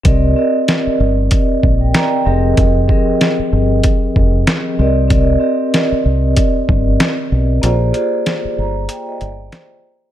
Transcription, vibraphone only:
0.03 0.33 C4 medium
0.03 0.33 G4 medium
0.03 0.33 A#4 medium
0.03 0.34 D5 medium
0.03 0.34 D#5 loud
0.36 1.50 C4 medium
0.36 1.51 G4 medium
0.36 1.32 A#4 medium
0.36 1.32 D5 medium
0.36 1.32 D#5 medium
1.81 1.94 A#4 medium
1.81 1.94 G5 medium
1.95 2.12 D5 medium
1.95 2.12 A#5 medium
2.12 2.26 A#4 soft
2.12 2.42 G5 medium
2.25 2.83 F3 medium
2.25 2.83 C4 medium
2.25 2.83 G4 medium
2.25 2.83 G#4 medium
2.25 2.84 A#4 medium
2.25 2.84 D#5 loud
2.88 4.03 F3 medium
2.88 4.03 C4 medium
2.88 4.03 G4 medium
2.88 4.03 G#4 medium
2.88 4.04 A#4 medium
2.88 4.04 D#5 medium
4.79 5.07 C4 medium
4.79 5.07 G4 medium
4.79 5.08 A#4 medium
4.79 5.08 D5 medium
4.79 5.09 D#5 loud
5.08 5.38 C4 medium
5.08 5.38 G4 medium
5.08 5.38 A#4 medium
5.08 5.39 D5 medium
5.08 5.39 D#5 medium
5.39 6.55 C4 medium
5.39 6.55 G4 medium
5.39 6.55 A#4 medium
5.39 6.56 D5 medium
5.39 6.56 D#5 loud
7.62 7.91 A#3 medium
7.62 7.91 F4 medium
7.62 7.91 G4 medium
7.62 7.92 G#4 medium
7.62 7.92 C5 medium
7.62 7.92 D5 loud
7.93 9.08 A#3 medium
7.93 9.08 F4 medium
7.93 9.08 G4 medium
7.93 9.08 G#4 medium
7.93 9.09 C5 medium
7.93 9.09 D5 medium
8.59 8.88 A#5 medium
8.88 9.06 G5 medium
9.07 9.20 D#5 medium
9.21 9.50 D5 medium
9.53 10.12 C5 medium

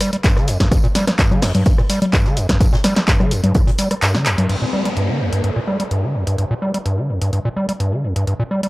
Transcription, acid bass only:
0.01 0.11 G3 medium
0.13 0.17 G3 medium
0.24 0.38 G2 medium
0.37 0.49 D3 medium
0.48 0.58 F2 loud
0.60 0.69 G2 medium
0.71 0.78 G2 medium
0.84 0.87 A#2 loud
0.95 1.05 G3 medium
1.07 1.11 G3 medium
1.19 1.33 G2 medium
1.31 1.44 D3 medium
1.42 1.52 F2 loud
1.55 1.64 G2 medium
1.66 1.73 G2 medium
1.78 1.82 A#2 loud
1.90 2.00 G3 medium
2.02 2.06 G3 medium
2.13 2.27 G2 medium
2.25 2.38 D3 medium
2.37 2.47 F2 loud
2.49 2.58 G2 medium
2.60 2.67 G2 medium
2.73 2.76 A#2 loud
2.84 2.94 G3 medium
2.96 3.00 G3 medium
3.08 3.21 G2 medium
3.20 3.33 D3 medium
3.31 3.41 F2 loud
3.44 3.53 G2 medium
3.67 3.71 A#2 loud
3.79 3.89 G3 medium
3.91 3.95 G3 medium
4.02 4.16 G2 medium
4.15 4.27 D3 medium
4.26 4.36 F2 loud
4.38 4.47 G2 medium
4.49 4.56 G2 medium
4.62 4.65 A#2 medium
4.73 4.83 G3 medium
4.85 4.89 G3 medium
4.97 5.11 G2 medium
5.09 5.22 D3 medium
5.20 5.30 F2 loud
5.33 5.42 G2 medium
5.44 5.51 G2 medium
5.56 5.60 A#2 loud
5.68 5.78 G3 medium
5.80 5.84 G3 medium
5.91 6.05 G2 medium
6.03 6.16 D3 medium
6.15 6.25 F2 loud
6.27 6.36 G2 medium
6.38 6.45 G2 medium
6.51 6.54 A#2 medium
6.62 6.72 G3 medium
6.74 6.78 G3 medium
6.86 6.99 G2 medium
6.98 7.11 D3 medium
7.09 7.19 F2 loud
7.22 7.31 G2 medium
7.33 7.40 G2 medium
7.45 7.49 A#2 loud
7.56 7.67 G3 medium
7.69 7.72 G3 medium
7.80 7.94 G2 medium
7.92 8.05 D3 medium
8.04 8.14 F2 loud
8.16 8.25 G2 medium
8.27 8.34 G2 medium
8.40 8.43 A#2 medium
8.51 8.61 G3 medium
8.63 8.67 G3 medium

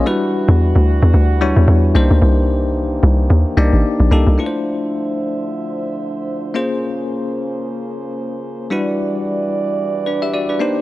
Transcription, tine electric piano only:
0.06 0.93 G3 medium
0.06 0.93 D4 medium
0.06 0.93 E4 medium
0.06 0.94 F#4 medium
0.06 0.94 B4 loud
1.41 1.86 G3 medium
1.41 1.86 D4 medium
1.41 1.86 E4 medium
1.41 1.86 F#4 medium
1.41 1.86 C#5 loud
1.95 2.82 A#3 medium
1.95 2.82 D4 medium
1.95 2.83 D#4 medium
1.95 2.83 G4 medium
1.95 2.83 C5 loud
3.57 4.02 A#3 medium
3.57 4.02 D4 medium
3.57 4.02 D#4 medium
3.57 4.03 G4 medium
3.57 4.03 D5 loud
4.11 4.34 A#3 medium
4.11 4.34 D4 medium
4.11 4.34 D#4 medium
4.11 4.34 G4 medium
4.11 4.34 A4 medium
4.38 6.50 A3 medium
4.38 6.50 D4 medium
4.38 6.51 E4 medium
4.38 6.51 F4 medium
4.38 4.46 B4 medium
4.46 6.54 C5 medium
6.54 8.66 A#3 medium
6.54 8.67 C#4 medium
6.54 8.67 F4 medium
6.54 8.67 G#4 medium
6.54 8.67 C5 medium
8.70 10.56 G3 medium
8.70 9.77 D4 medium
8.70 9.77 E4 medium
8.70 9.77 F#4 medium
8.70 9.77 B4 medium
10.06 10.21 D4 medium
10.06 10.21 B4 medium
10.22 10.33 G4 medium
10.22 10.33 E5 medium
10.34 10.48 F#4 medium
10.34 10.48 D5 medium
10.49 10.59 D4 soft
10.49 10.74 B4 medium
10.59 10.81 A#3 medium
10.59 10.81 D4 medium
10.59 10.81 D#4 medium
10.59 10.81 G4 medium
10.59 10.81 C5 medium

